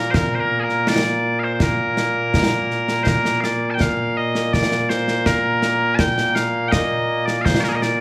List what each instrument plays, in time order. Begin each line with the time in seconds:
Already playing: bagpipes A#2 A#3 A#4
0.11 bagpipes C5, concert bass drum, snare
0.15 bagpipes A#4
0.35 bagpipes C5
0.40 bagpipes A#4
0.60 bagpipes G#4
0.64 bagpipes A#4
0.69 snare
0.87 bagpipes D5, snare
1.39 bagpipes F5
1.44 bagpipes C5
1.54 bagpipes C5
1.60 bagpipes A#4, concert bass drum, snare
1.97 snare
2.34 concert bass drum, snare
2.71 snare
2.88 snare
3.03 bagpipes C5, concert bass drum, snare
3.07 bagpipes A#4
3.25 snare
3.41 bagpipes D5 F5, snare
3.70 bagpipes G5 A5
3.80 bagpipes F5, concert bass drum, snare
4.17 bagpipes D#5
4.35 snare
4.53 bagpipes D5, concert bass drum, snare
4.72 snare
4.89 bagpipes C5, snare
5.08 snare
5.26 bagpipes A#4, concert bass drum, snare
5.62 snare
5.95 bagpipes A5, concert bass drum, snare
5.99 bagpipes G5
6.18 snare
6.35 bagpipes F5, snare
6.68 bagpipes D#5 G5
6.72 concert bass drum, snare
7.26 bagpipes D5, snare
7.41 bagpipes C5 F5
7.46 concert bass drum, snare
7.61 bagpipes A#4 D5, snare
7.69 bagpipes G#4 A#4
7.75 bagpipes D#5
7.82 bagpipes D5, snare